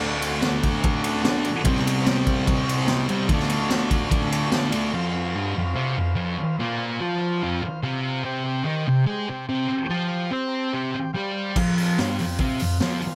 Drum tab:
CC |----------------|----------------|----------------|----------------|
RD |--x-x-x-x-x-x-x-|x-x-x-x-x-x-x-x-|x-x-x-x-x-x-x-x-|----------------|
HH |----------------|----------------|----------------|----------------|
SD |----o-------o---|-o--o-------o---|-o--o-------o---|----------------|
BD |------o-o-------|o-----o-o-------|o-----o-o-------|----------------|

CC |----------------|----------------|----------------|x---------------|
RD |----------------|----------------|----------------|----------------|
HH |----------------|----------------|----------------|--o-o-o-o-o-o-o-|
SD |----------------|----------------|----------------|----o-------o---|
BD |----------------|----------------|----------------|o-------o-------|